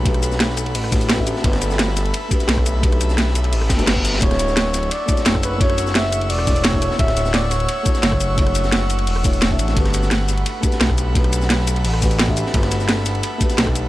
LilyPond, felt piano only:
\new Staff \with { instrumentName = "Felt piano" } { \time 4/4 \key g \lydian \tempo 4 = 173 <a d' fis' g' b'>2~ <a d' fis' g' b'>8 <a d' fis' g' b'>8. <a d' fis' g' e''>8. | <a d' fis' g' b'>2~ <a d' fis' g' b'>8 <a d' fis' g' b'>4. | <a d' fis' g' b'>2~ <a d' fis' g' b'>8 r16 <a d' fis' g' b'>4~ <a d' fis' g' b'>16 | <a d' e' fis' cis''>2~ <a d' e' fis' cis''>8 <a d' e' fis' cis''>4. |
<a d' e' fis' cis''>2~ <a d' e' fis' cis''>8 <a d' e' fis' cis''>8. <a d' e' fis' e''>8. | <a d' e' fis' cis''>2~ <a d' e' fis' cis''>8 <a d' e' fis' cis''>4. | <a d' e' fis' cis''>2~ <a d' e' fis' cis''>8 <a d' e' fis' cis''>8. <a d' e' fis' e''>8. | <a d' fis' g' b'>2~ <a d' fis' g' b'>8 <a d' fis' g' b'>4. |
<a d' fis' g' b'>2~ <a d' fis' g' b'>8 <a d' fis' g' b'>8. <a d' fis' g' e''>8. | <a d' fis' g' b'>2~ <a d' fis' g' b'>8 <a d' fis' g' b'>4. | }